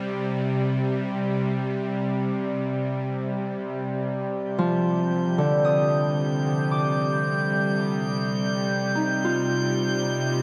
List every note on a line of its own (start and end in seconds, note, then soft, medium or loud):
0.00 4.30 C3 medium
0.00 4.31 G3 medium
4.31 10.42 C3 medium
4.31 10.42 G3 medium
4.31 10.42 G6 medium
4.58 5.42 F3 medium
5.38 8.64 D3 medium
5.65 6.92 D#6 medium
6.71 10.13 D6 medium
8.95 10.42 D#4 medium
9.24 10.42 F4 medium